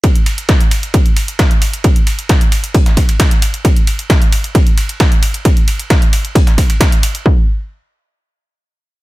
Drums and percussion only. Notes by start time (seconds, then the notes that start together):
0.04 kick, closed hi-hat, ride
0.16 closed hi-hat
0.26 open hi-hat, ride
0.38 closed hi-hat
0.49 kick, snare, closed hi-hat, ride
0.61 closed hi-hat
0.71 open hi-hat, ride
0.83 closed hi-hat
0.94 kick, closed hi-hat, ride
1.06 closed hi-hat
1.16 open hi-hat, ride
1.28 closed hi-hat
1.39 kick, snare, closed hi-hat, ride
1.51 closed hi-hat
1.62 open hi-hat, ride
1.73 closed hi-hat
1.84 kick, closed hi-hat, ride
1.96 closed hi-hat
2.07 open hi-hat, ride
2.19 closed hi-hat
2.29 kick, snare, closed hi-hat, ride
2.41 closed hi-hat
2.52 open hi-hat, ride
2.64 closed hi-hat
2.74 kick, closed hi-hat, open hi-hat
2.86 snare, closed hi-hat
2.97 kick, open hi-hat, ride
3.09 closed hi-hat, ride
3.20 kick, snare, closed hi-hat, ride
3.31 closed hi-hat
3.42 open hi-hat, ride
3.54 closed hi-hat
3.65 kick, closed hi-hat, ride
3.76 closed hi-hat
3.87 open hi-hat, ride
3.99 closed hi-hat
4.10 kick, snare, closed hi-hat, ride
4.22 closed hi-hat
4.32 open hi-hat, ride
4.44 closed hi-hat
4.55 kick, closed hi-hat, ride
4.67 closed hi-hat
4.78 open hi-hat, ride
4.89 closed hi-hat
5.00 kick, snare, closed hi-hat, ride
5.12 closed hi-hat
5.23 open hi-hat, ride
5.34 closed hi-hat
5.45 kick, closed hi-hat, ride
5.57 closed hi-hat
5.68 open hi-hat, ride
5.79 closed hi-hat
5.90 kick, snare, closed hi-hat, ride
6.02 closed hi-hat
6.13 open hi-hat, ride
6.25 closed hi-hat
6.35 kick, closed hi-hat, open hi-hat
6.47 snare, closed hi-hat
6.58 kick, open hi-hat, ride
6.70 closed hi-hat, ride
6.81 kick, snare, closed hi-hat, ride
6.92 closed hi-hat
7.03 open hi-hat, ride
7.15 closed hi-hat
7.26 kick